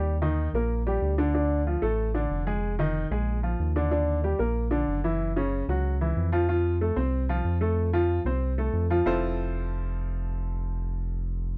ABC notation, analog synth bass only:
X:1
M:4/4
L:1/8
Q:1/4=187
K:F
V:1 name="Analog synth bass" clef=bass
_E,,3 B,,,3 D,,2- | D,,3 A,,,3 F,,,2- | F,,,3 B,,,3 _E,,2- | _E,,3 B,,,3 _G,,,2- |
_G,,,3 _D,,3 F,,2- | F,,3 C,,3 F,,2- | F,,3 C,,3 F,,2 | F,,,8- |
F,,,8 |]